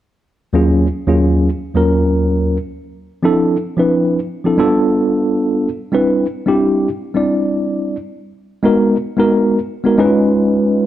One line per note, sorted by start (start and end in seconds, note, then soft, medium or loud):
0.53 0.85 D#2 medium
0.53 0.86 F#3 medium
0.53 0.86 A#3 medium
0.53 0.86 C#4 medium
0.53 0.87 F4 medium
0.53 0.87 G#4 medium
1.07 1.48 D#2 medium
1.07 1.48 F#3 medium
1.07 1.48 A#3 medium
1.07 1.48 C#4 medium
1.07 1.49 F4 medium
1.07 1.49 G#4 medium
1.74 2.56 D#2 medium
1.74 2.56 F#3 medium
1.74 2.56 A#3 medium
1.74 2.56 C#4 medium
1.74 2.57 F4 medium
1.74 2.57 A#4 medium
3.23 3.55 F3 medium
3.23 3.55 C4 medium
3.23 3.56 D4 medium
3.23 3.56 E4 medium
3.23 3.56 A4 medium
3.77 4.18 F3 medium
3.77 4.18 C4 medium
3.77 4.18 D4 medium
3.77 4.19 E4 medium
3.77 4.19 B4 medium
4.44 4.58 F3 medium
4.44 4.59 C4 medium
4.44 4.57 D4 medium
4.44 4.59 E4 medium
4.44 4.59 A4 medium
4.57 5.67 G3 medium
4.57 5.68 B3 medium
4.57 5.68 D4 medium
4.57 5.68 F4 medium
4.57 5.68 A4 loud
5.92 6.25 G3 medium
5.92 6.25 C4 medium
5.92 6.25 D4 medium
5.92 6.26 E4 medium
5.92 6.26 B4 medium
6.46 6.87 G3 medium
6.46 6.87 C4 medium
6.46 6.88 D4 medium
6.46 6.88 E4 medium
6.46 6.88 G4 medium
7.14 7.95 G3 medium
7.14 7.95 C4 medium
7.14 7.96 D4 medium
7.14 7.96 E4 medium
7.14 7.96 D5 medium
8.63 8.95 G#3 medium
8.63 8.95 B3 medium
8.63 8.95 D#4 medium
8.63 8.96 F#4 medium
8.63 8.96 A#4 medium
9.17 9.57 G#3 medium
9.17 9.58 B3 medium
9.17 9.58 D#4 medium
9.17 9.58 F#4 medium
9.17 9.59 A#4 medium
9.84 9.96 G#3 medium
9.84 9.98 B3 medium
9.84 9.98 D#4 medium
9.84 9.99 F#4 medium
9.84 9.99 A#4 medium
9.98 10.86 G#3 medium
9.98 10.86 C#4 medium
9.98 10.86 D#4 medium
9.98 10.06 E4 medium
9.98 10.86 B4 loud
10.06 10.86 F4 medium